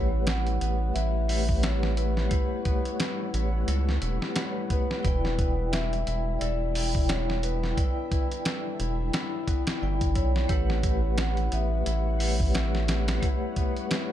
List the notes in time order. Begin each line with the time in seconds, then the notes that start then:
Already playing: A1 G3 A3 B3 E4 G4 A4 B4 C#5 F#5
0.26 E4 F#5, snare, closed hi-hat
0.47 closed hi-hat
0.61 A1 B3, closed hi-hat
0.94 A1 E4 E5, closed hi-hat
1.28 A3 E4 G4 B4 C#5 F#5, open hi-hat
1.49 kick
1.63 A4 C#5, snare, closed hi-hat
1.83 snare
1.97 E4 B4, closed hi-hat
2.17 snare
2.29 A3 E4 G4 B4 C#5, kick, closed hi-hat
2.34 F#5
2.65 B3, kick, closed hi-hat
2.85 closed hi-hat
3.00 E4, snare, closed hi-hat
3.34 A1 E4, closed hi-hat
3.68 C#2 A4, closed hi-hat
3.89 snare
4.02 E1 E4, closed hi-hat
4.22 snare
4.35 A3 E4 G4 B4 C#5 F#5, snare, closed hi-hat
4.70 B3 B4, kick, closed hi-hat
4.91 snare
5.03 E1 E4 D5 E5, kick, closed hi-hat
5.08 G5
5.25 snare
5.39 B3, kick, closed hi-hat
5.72 E4 E5, snare, closed hi-hat
5.93 closed hi-hat
6.07 E1 E4, closed hi-hat
6.39 E1 A4 D5, closed hi-hat
6.74 E4 D5 G5, open hi-hat
6.95 kick
7.07 E4 C#5, snare, closed hi-hat
7.30 snare
7.43 B3 B4, closed hi-hat
7.63 snare
7.75 D4 E4 D5, kick, closed hi-hat
7.80 G5
8.11 E4, kick, closed hi-hat
8.32 closed hi-hat
8.45 A4, snare, closed hi-hat
8.80 E1 E4, closed hi-hat
9.13 E4, snare, closed hi-hat
9.48 B3, kick, closed hi-hat
9.67 snare, closed hi-hat
9.81 G1 E4 D5 G5
10.01 kick, closed hi-hat
10.15 B1 E4 C#5, kick, closed hi-hat
10.36 snare
10.48 A1 G3 A3 G4 A4 B4 C#5 F#5, kick, closed hi-hat
10.53 F#5
10.70 snare
10.83 E4, kick, closed hi-hat
11.18 E4 F#5, snare, closed hi-hat
11.37 closed hi-hat
11.52 A1 B3 E5, closed hi-hat
11.86 A1 E4, closed hi-hat
12.19 A3 E4 G4 B4 C#5 F#5, open hi-hat
12.40 kick
12.54 A4, snare, closed hi-hat
12.75 snare
12.88 E4, snare, closed hi-hat
13.08 snare, closed hi-hat
13.20 A3 E4 G4 B4 C#5, kick, closed hi-hat
13.25 F#5
13.56 B3, kick, closed hi-hat
13.77 closed hi-hat
13.91 E4, snare, closed hi-hat